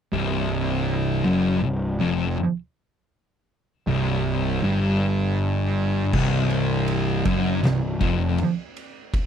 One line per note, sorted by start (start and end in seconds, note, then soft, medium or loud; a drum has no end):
0.13 1.22 C1 medium
0.13 1.24 C2 loud
1.25 1.60 F#1 medium
1.25 1.62 F#2 medium
1.62 1.98 C1 medium
1.62 1.93 C2 medium
2.01 2.36 F1 medium
2.01 2.37 F2 loud
3.87 4.59 C1 medium
3.87 4.62 C2 loud
4.64 6.10 G1 medium
4.64 6.13 G2 loud
6.13 7.22 C1 loud
6.13 7.25 C2 loud
6.13 kick loud
6.13 crash loud
6.50 ride medium
6.88 ride loud
7.25 7.61 F#1 medium
7.25 7.62 F#2 loud
7.25 kick loud
7.25 ride medium
7.62 7.99 C1 medium
7.62 7.93 C2 medium
7.62 snare loud
7.62 ride loud
8.00 8.36 F1 loud
8.00 8.37 F2 loud
8.00 kick loud
8.00 ride medium
8.38 ride loud
8.77 ride medium
9.14 kick loud
9.14 ride loud